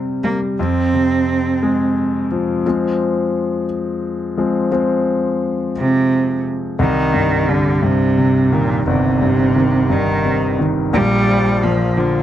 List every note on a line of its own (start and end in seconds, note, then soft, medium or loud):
0.00 0.59 C3 medium
0.00 0.19 G3 medium
0.23 0.57 G3 medium
0.23 0.39 A#3 medium
0.59 2.61 F2 medium
0.59 2.27 C4 loud
0.94 2.27 C3 medium
1.63 2.62 G#3 medium
2.32 2.64 F3 medium
2.66 3.65 F3 medium
2.66 3.65 G#3 soft
2.66 3.65 C4 medium
4.37 4.68 F3 soft
4.37 4.69 G#3 soft
4.37 4.69 C4 soft
4.71 5.71 F3 medium
4.71 5.71 G#3 soft
4.71 5.72 C4 medium
5.77 6.41 C3 loud
6.79 8.82 C2 medium
6.79 7.50 D#3 loud
7.14 7.81 G2 medium
7.49 7.86 D3 loud
7.49 8.82 G3 medium
7.83 9.16 G2 medium
7.83 8.54 C3 loud
8.18 9.51 C3 medium
8.52 8.86 A#2 loud
8.52 9.54 D#3 medium
8.87 10.90 G1 medium
8.87 9.93 C3 loud
9.22 9.88 G2 medium
9.56 10.58 D#3 medium
9.90 10.90 G2 medium
9.90 10.59 D#3 loud
10.25 10.91 C3 medium
10.59 10.92 D#3 medium
10.93 12.23 A#1 medium
10.93 11.62 A#2 medium
10.93 11.65 G3 loud
11.29 11.96 F3 medium
11.63 12.23 A#2 medium
11.63 11.99 F3 loud
11.97 12.23 D3 loud
11.97 12.23 F3 medium